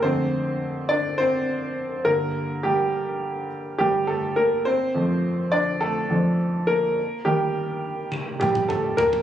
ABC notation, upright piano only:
X:1
M:4/4
L:1/8
Q:1/4=104
K:Fmix
V:1 name="Upright piano"
[Cc]3 [Dd] [Cc]3 B- | B [G,G]3 z [G,G] [A,A] [B,B] | [Cc]3 [Dd] [A,A]3 [B,B]- | [B,B] G3 z [G,G] [A,A] [B,B] |]
V:2 name="Upright piano" clef=bass
[F,,D,A,]3 z4 [G,,D,B,]- | [G,,D,B,]2 z6 | z [F,,F,A,]3 z [F,,F,A,] z2 | z [E,G,B,]6- [E,G,B,] |]